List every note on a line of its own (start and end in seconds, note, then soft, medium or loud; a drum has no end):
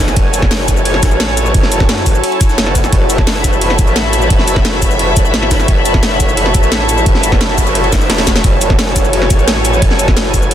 0.00 0.15 G#1 loud
0.00 10.54 E4 medium
0.00 10.54 F#4 medium
0.00 10.54 A4 medium
0.00 3.20 C#5 medium
0.00 10.54 C#5 medium
0.00 2.90 G#5 medium
0.08 snare soft
0.08 shaker soft
0.16 1.01 F#1 loud
0.16 kick loud
0.16 closed hi-hat medium
0.16 ride medium
0.34 closed hi-hat medium
0.34 ride medium
0.34 shaker medium
0.42 kick loud
0.42 snare soft
0.51 snare loud
0.51 closed hi-hat medium
0.51 open hi-hat medium
0.60 snare medium
0.68 kick medium
0.68 snare soft
0.68 closed hi-hat medium
0.68 ride medium
0.68 shaker medium
0.77 shaker soft
0.85 closed hi-hat medium
0.85 ride medium
0.94 snare soft
1.03 1.53 A1 loud
1.03 kick loud
1.03 snare loud
1.03 closed hi-hat medium
1.03 open hi-hat medium
1.03 shaker medium
1.11 ride soft
1.11 shaker soft
1.20 snare loud
1.20 closed hi-hat medium
1.20 ride medium
1.37 closed hi-hat medium
1.37 ride medium
1.37 shaker medium
1.46 shaker soft
1.54 1.88 F#1 loud
1.54 kick loud
1.54 closed hi-hat medium
1.54 ride medium
1.63 snare soft
1.72 closed hi-hat medium
1.72 ride medium
1.72 shaker medium
1.80 kick loud
1.80 snare soft
1.89 2.05 F#2 loud
1.89 snare loud
1.89 closed hi-hat medium
1.89 ride medium
1.98 snare soft
2.06 2.22 G#1 loud
2.06 kick medium
2.06 open hi-hat medium
2.06 ride medium
2.06 shaker medium
2.15 shaker soft
2.23 closed hi-hat medium
2.23 ride medium
2.32 ride soft
2.41 kick loud
2.41 closed hi-hat medium
2.41 ride medium
2.41 shaker medium
2.49 snare soft
2.49 shaker soft
2.58 2.91 F#1 medium
2.58 snare loud
2.58 closed hi-hat medium
2.58 ride medium
2.67 snare soft
2.75 kick medium
2.75 closed hi-hat medium
2.75 ride medium
2.75 shaker medium
2.84 snare soft
2.84 shaker soft
2.92 3.77 F#1 medium
2.92 8.42 B5 medium
2.92 kick loud
2.92 closed hi-hat medium
2.92 ride medium
3.10 closed hi-hat medium
3.10 ride medium
3.10 shaker medium
3.18 8.71 E5 medium
3.18 kick loud
3.18 snare soft
3.27 snare loud
3.27 closed hi-hat medium
3.27 open hi-hat medium
3.36 snare medium
3.44 kick medium
3.44 snare soft
3.44 closed hi-hat medium
3.44 ride medium
3.44 shaker medium
3.53 shaker soft
3.61 closed hi-hat medium
3.61 ride medium
3.70 snare soft
3.79 4.29 A1 loud
3.79 kick loud
3.79 closed hi-hat medium
3.79 ride medium
3.79 shaker medium
3.87 ride soft
3.87 shaker soft
3.96 snare loud
3.96 closed hi-hat medium
3.96 ride medium
4.13 closed hi-hat medium
4.13 ride medium
4.13 shaker medium
4.22 shaker soft
4.30 5.15 F#1 loud
4.30 kick loud
4.30 closed hi-hat medium
4.30 ride medium
4.39 snare soft
4.48 closed hi-hat medium
4.48 ride medium
4.48 shaker medium
4.56 kick loud
4.56 snare soft
4.65 snare loud
4.65 closed hi-hat medium
4.65 ride medium
4.73 snare soft
4.82 kick medium
4.82 open hi-hat medium
4.82 ride medium
4.82 shaker medium
4.91 shaker soft
4.99 closed hi-hat medium
4.99 ride medium
5.17 5.67 G#1 medium
5.17 kick loud
5.17 closed hi-hat medium
5.17 ride medium
5.17 shaker medium
5.25 shaker soft
5.34 snare loud
5.34 closed hi-hat medium
5.42 snare soft
5.51 kick medium
5.51 snare loud
5.51 closed hi-hat medium
5.51 open hi-hat medium
5.51 shaker medium
5.60 snare soft
5.60 shaker soft
5.68 6.53 F#1 medium
5.68 kick loud
5.68 closed hi-hat medium
5.68 ride medium
5.86 closed hi-hat medium
5.86 ride medium
5.86 shaker medium
5.94 kick loud
5.94 snare soft
6.03 snare loud
6.03 closed hi-hat medium
6.03 open hi-hat medium
6.11 snare medium
6.20 kick medium
6.20 snare soft
6.20 closed hi-hat loud
6.20 ride medium
6.20 shaker medium
6.29 shaker soft
6.37 closed hi-hat medium
6.37 ride medium
6.46 snare soft
6.54 7.05 A1 loud
6.54 kick loud
6.54 closed hi-hat medium
6.54 ride medium
6.54 shaker medium
6.63 ride soft
6.63 shaker soft
6.72 snare loud
6.72 closed hi-hat medium
6.72 ride medium
6.89 closed hi-hat loud
6.89 ride medium
6.89 shaker medium
6.98 shaker soft
7.06 7.22 F#1 loud
7.06 kick loud
7.06 closed hi-hat medium
7.06 ride medium
7.06 noise sweep medium
7.15 snare soft
7.23 8.08 F#1 loud
7.23 closed hi-hat medium
7.23 ride medium
7.23 shaker medium
7.32 kick loud
7.32 snare soft
7.41 snare loud
7.41 closed hi-hat medium
7.41 ride medium
7.49 snare soft
7.58 kick medium
7.58 open hi-hat medium
7.58 ride medium
7.58 shaker medium
7.67 shaker soft
7.75 closed hi-hat medium
7.75 ride medium
7.84 ride soft
7.92 kick loud
7.92 snare medium
7.92 snare loud
7.92 closed hi-hat loud
7.92 open hi-hat medium
7.92 shaker medium
8.01 snare medium
8.01 shaker soft
8.10 8.43 E1 medium
8.10 snare loud
8.10 snare medium
8.10 closed hi-hat medium
8.10 open hi-hat medium
8.18 snare loud
8.18 snare medium
8.18 open hi-hat medium
8.27 kick medium
8.27 snare loud
8.27 snare soft
8.27 closed hi-hat loud
8.27 shaker medium
8.36 snare medium
8.36 snare soft
8.36 ride medium
8.36 shaker soft
8.44 9.29 F#1 loud
8.44 10.54 G#5 loud
8.44 kick loud
8.44 closed hi-hat medium
8.44 ride medium
8.61 closed hi-hat loud
8.61 ride medium
8.61 shaker medium
8.70 10.54 C#5 medium
8.70 kick loud
8.70 snare soft
8.79 snare loud
8.79 closed hi-hat medium
8.79 open hi-hat medium
8.87 snare medium
8.96 kick medium
8.96 snare soft
8.96 closed hi-hat loud
8.96 ride medium
8.96 shaker medium
9.05 shaker soft
9.13 closed hi-hat medium
9.13 ride medium
9.22 snare soft
9.30 9.81 A1 loud
9.30 kick loud
9.30 closed hi-hat loud
9.30 ride medium
9.30 shaker medium
9.39 ride soft
9.39 shaker soft
9.48 snare loud
9.48 closed hi-hat medium
9.48 ride loud
9.65 closed hi-hat loud
9.65 ride medium
9.65 shaker medium
9.73 shaker soft
9.82 10.54 F#1 loud
9.82 kick loud
9.82 closed hi-hat medium
9.82 ride medium
9.91 snare soft
9.99 closed hi-hat medium
9.99 ride medium
9.99 shaker medium
10.08 kick loud
10.08 snare soft
10.17 snare loud
10.17 closed hi-hat medium
10.17 ride medium
10.25 snare soft
10.34 kick medium
10.34 open hi-hat medium
10.34 ride medium
10.34 shaker medium
10.42 shaker soft
10.51 closed hi-hat medium